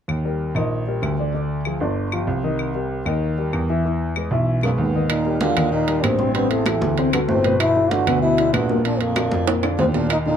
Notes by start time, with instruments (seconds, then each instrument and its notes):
0.08 grand piano D#2, claves
0.25 upright piano G3 G4 A#4
0.55 grand piano A#1, upright piano D#3 D#4 D#5, claves
0.88 upright piano G3 G4 A#4
1.02 grand piano D2, claves
1.19 upright piano D3 D4 D5
1.34 upright piano D3 D4 D5
1.65 upright piano F3 F4 G#4, claves
1.80 grand piano G1, upright piano D3 D4 D5
2.12 upright piano F3 F4 G4, claves
2.27 grand piano C2
2.44 upright piano D#3 D#4 D#5
2.59 claves
2.75 upright piano G3 G4 A#4
3.06 grand piano D#2, upright piano D#3 D#4 D#5, claves
3.38 upright piano G3 G4 A#4
3.53 grand piano E2, claves
3.70 upright piano E3 E4 E5
3.85 upright piano E3 E4 E5
4.16 upright piano G#3 G#4 B4, claves
4.31 grand piano B1, upright piano E3 E4 E5
4.63 baritone saxophone F#2, upright piano G#3 G#4 B4, trombone A#3, claves
4.78 grand piano D#2, baritone saxophone G#2, trombone B3
4.95 upright piano D#3 D#4 D#5
5.09 baritone saxophone A#2, trombone D#4, high conga, high timbale, claves
5.25 upright piano G3 G4 A#4, high conga
5.41 baritone saxophone D3, upright piano G3 G4 A#4, trombone F4, high conga, high timbale
5.56 grand piano D#2, upright piano D#3 D#4 D#5, high timbale, claves
5.72 baritone saxophone A#2, trombone D#4, high conga
5.88 upright piano G3 G4 A#4, high conga, high timbale
6.03 grand piano A1, baritone saxophone G2, trombone C4, high conga, high timbale, low timbale, claves
6.19 upright piano C3 C4 C5, high conga
6.34 baritone saxophone G2, upright piano C3 C4 C5, trombone B3, high conga, high timbale
6.50 baritone saxophone E2, trombone A3, high conga, high timbale
6.66 upright piano E3 E4 G4, high conga, high timbale, claves
6.81 grand piano D2, high conga
6.97 upright piano C3 C4 C5, high conga, high timbale
7.12 baritone saxophone G2, upright piano F#3 F#4 A4, trombone B3, high conga, high timbale, claves
7.28 grand piano G1, baritone saxophone A2, trombone C4, high conga
7.44 upright piano B2 B3 B4, high conga, high timbale
7.59 baritone saxophone B2, trombone E4, high timbale, claves
7.76 upright piano D3 D4 E4, high conga
7.90 baritone saxophone D3, upright piano D3 D4 E4, trombone F#4, high conga, high timbale
8.07 grand piano D2, upright piano B2 B3 B4, high timbale, claves
8.22 baritone saxophone B2, trombone E4, high conga
8.38 upright piano D3 D4 E4, high conga, high timbale
8.53 grand piano A#1, baritone saxophone G2, trombone B3, high conga, high timbale, claves
8.69 upright piano A#2 A#3 A#4, high conga
8.84 baritone saxophone A#2, upright piano A#2 A#3 A#4, trombone D4, high conga, high timbale
9.00 baritone saxophone F2, trombone A#3, high conga, high timbale
9.16 upright piano D3 D4 F4, high conga, high timbale, claves
9.31 grand piano F2, high conga
9.47 upright piano A#2 A#3 A#4, high conga, high timbale
9.63 upright piano D3 D4 F4, high conga, high timbale, claves
9.78 grand piano D#2, baritone saxophone G#2, trombone C4, high conga, low timbale
9.94 baritone saxophone A#2, upright piano A#2 A#3 A#4, trombone D4, low timbale
10.09 baritone saxophone A#2, trombone D#4, high conga, high timbale, claves
10.25 baritone saxophone A#2, upright piano D3 D4 D#4, trombone D#4, high conga